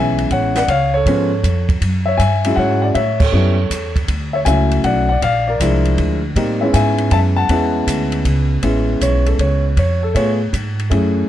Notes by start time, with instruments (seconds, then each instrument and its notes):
Already playing: upright bass B1, grand piano E3 G#3 B3 C#4 E5 G#5
0.18 ride
0.30 upright bass A1, grand piano C#5 F#5, kick, ride
0.55 grand piano D5 F#5, snare, ride
0.68 upright bass C#2, grand piano C#5 F5, kick, ride
0.94 grand piano A4 C#5
1.06 upright bass G#2, grand piano F3 G#3 B3 C#4, kick, ride
1.43 upright bass F2, kick, hi-hat pedal, ride
1.69 kick, ride
1.81 upright bass F#2, kick, ride
2.06 grand piano C#5 E5
2.17 upright bass G2, grand piano E5 G#5, kick, hi-hat pedal, ride
2.44 grand piano F#3 G#3 C#4 E4, ride
2.56 upright bass G#2, grand piano C#5 F#5, kick
2.82 grand piano D5 F#5
2.94 upright bass A2, grand piano C#5 E5, kick, ride
3.20 grand piano A4 C#5, kick, crash
3.32 upright bass F#2, grand piano G3 B3 C#4 E4
3.70 upright bass E2, kick, hi-hat pedal, ride
3.96 kick, ride
4.08 upright bass D2, kick, ride
4.33 grand piano C#5 E5
4.45 upright bass C#2, grand piano F#3 A3 C#4 E4 E5 G#5, kick, hi-hat pedal, ride
4.71 ride
4.84 upright bass B1, grand piano D5 F#5, kick, ride
5.09 grand piano D5 F#5
5.22 upright bass A#1, grand piano D5 F5, kick, ride
5.48 grand piano A#4 D5
5.60 upright bass C2, grand piano F3 G#3 D4 E4, kick, hi-hat pedal, ride
5.85 ride
5.98 upright bass D2, kick, ride
6.35 upright bass A2, grand piano G3 A#3 C4 D#4, kick, ride
6.61 grand piano G#3 B3 C#4 E4 C#5 E5
6.74 upright bass G#2, grand piano E5 G#5, kick, hi-hat pedal, ride
6.98 ride
7.11 upright bass F#2, grand piano E5 A5, kick, ride
7.36 grand piano F#5 A5
7.49 upright bass E2, grand piano G#3 B3 C#4 E4, kick, ride
7.87 upright bass D2, kick, hi-hat pedal, ride
8.12 ride
8.25 upright bass C#2, kick, ride
8.63 upright bass A1, grand piano G#3 B3 C#4 E4, kick, ride
9.01 upright bass B1, grand piano C#5, kick, hi-hat pedal, ride
9.26 grand piano A4, ride
9.39 upright bass C#2, grand piano C#5, kick, ride
9.77 upright bass F2, grand piano C#5, kick, ride
10.03 grand piano A4
10.14 upright bass A2, grand piano A3 B3 F4 G#4 C#5, kick, ride
10.53 upright bass G#2, kick, hi-hat pedal, ride
10.79 ride
10.90 upright bass F#2, grand piano A3 C#4 E4 G#4, kick, ride